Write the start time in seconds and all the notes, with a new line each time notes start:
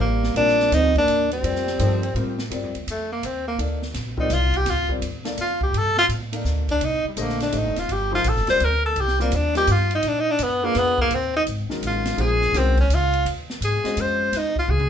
0.00 A1 G3 A#3
0.23 snare
0.35 A#1 G3 A#3 C4 D4 F4 A#4 D5, ride
0.48 snare
0.60 snare
0.71 D2 F3 A#3 C4 D#4 A4 C5, hi-hat pedal, ride
0.95 A#3 D4, kick, ride
1.07 D#2, hi-hat pedal, ride
1.31 G3 C4, ride
1.43 F2 G3 C4 F4 A#4 D5, ride
1.55 snare
1.67 snare
1.79 G2 F3 A#3 D#4 A4 C5, hi-hat pedal, ride
2.03 ride
2.15 A2 G3 C4 F4 A#4 C5, ride
2.38 snare
2.50 G2 G3 C4 F4 A#4 D5, ride
2.63 F2
2.75 D2, ride
2.87 F2 A3, hi-hat pedal, ride
3.12 A#3
3.23 D#2 C4, hi-hat pedal, ride
3.48 A#3
3.58 D2 A#3 D#4 A4 D5 F5, ride
3.82 snare
3.94 A#1, snare, ride
4.17 G3 C4 D#4 F4 A#4 D5, kick
4.30 C2 F4, snare, hi-hat pedal, ride
4.53 G4, kick, ride
4.66 D2, snare, ride
4.70 F4
4.88 G3 C4 F4 A#4 D5, kick
5.02 D#2, hi-hat pedal, ride
5.24 A#3 D#4 A4 D5 F5, snare, ride
5.38 F2 F4, hi-hat pedal, ride
5.61 G4, kick
5.73 G2, ride
5.78 A4
5.97 F4, snare
6.09 A2, hi-hat pedal, ride
6.32 A#3 D#4 A4 D5 F5, ride
6.44 D2, snare, hi-hat pedal
6.68 D4, kick, ride
6.81 C2 D#4, ride
7.04 G3, muted upright bass stroke
7.16 A#1 D3 A3 G4 C5 D#5, hi-hat pedal, ride
7.21 A#3
7.29 snare
7.40 D4, snare, ride
7.52 A1 A3 D4 G4 C5 D#5, hi-hat pedal, ride
7.57 D#4
7.65 G1
7.76 D#1 F4, snare, ride
7.89 G1 G4, ride
8.11 F3 A#3 D#4 F4 A4 C5
8.24 A#1, hi-hat pedal, ride
8.29 A4
8.36 G1, snare
8.47 D#1 G3 C4 F4 A#4 C5 D5, snare, ride
8.60 D2, ride
8.65 A#4
8.86 A4
8.96 C2, ride
9.01 G4
9.08 snare
9.19 G3 A#3 C4 F4 A#4 D5, snare
9.32 D#2, hi-hat pedal, ride
9.36 D4
9.55 G3 C4 F4 G4 A#4 D#5, snare, ride
9.67 G2, hi-hat pedal, ride
9.72 F4
9.91 ride
9.95 D#4
10.03 A#2, ride
10.08 D4
10.20 D#4
10.31 D4
10.39 F#2, hi-hat pedal, ride
10.43 B3
10.62 A#3 D4 F4 G#4 B4
10.75 F2 B3, snare, ride
10.98 A#3, kick
11.11 D#2, ride
11.15 C4
11.37 D#4
11.47 G#1, hi-hat pedal, ride
11.69 D#3 F#3 G#3 C#4 A#4, muted upright bass stroke, snare
11.82 A1, hi-hat pedal, ride
11.87 F4
12.05 snare, ride
12.17 A#1 F3 A#3 D#4 G#4 C5, ride
12.21 G#4
12.41 snare
12.53 C2 D#3 G#3 C#4 F#4 A#4, snare, hi-hat pedal, ride
12.58 C4
12.77 C#4, kick, ride
12.89 C#2, hi-hat pedal, ride
12.94 F4
13.13 ride
13.25 D#2, ride
13.50 snare
13.61 G#2 G#4, hi-hat pedal, ride
13.84 G#3 C#4 F#4 C5 D#5, muted upright bass stroke, snare, ride
13.97 F2, hi-hat pedal, ride
14.01 C5
14.32 D#2, snare, ride
14.38 D#4
14.56 F4, kick
14.68 C#2 G#4, mid tom
14.80 mid tom